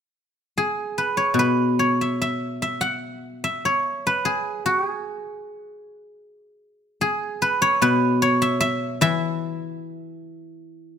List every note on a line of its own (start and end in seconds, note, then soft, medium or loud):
0.58 2.84 G#4 medium
0.98 1.39 B4 medium
1.17 1.79 C#5 medium
1.34 3.84 B2 soft
1.39 3.44 B4 medium
1.79 3.65 C#5 medium
2.01 2.21 E5 medium
2.22 2.62 E5 medium
2.62 3.44 E5 medium
2.81 4.41 F#5 medium
3.44 5.16 E5 medium
3.65 5.56 C#5 medium
4.07 6.11 B4 medium
4.25 4.65 G#4 medium
4.66 4.88 F#4 medium
4.88 6.92 G#4 medium
7.01 9.28 G#4 medium
7.42 7.82 B4 medium
7.62 8.22 C#5 medium
7.82 9.04 B2 medium
7.82 9.87 B4 medium
8.22 10.13 C#5 medium
8.42 8.60 E5 medium
8.61 9.01 E5 medium
9.01 10.98 E3 medium
9.01 10.98 E5 medium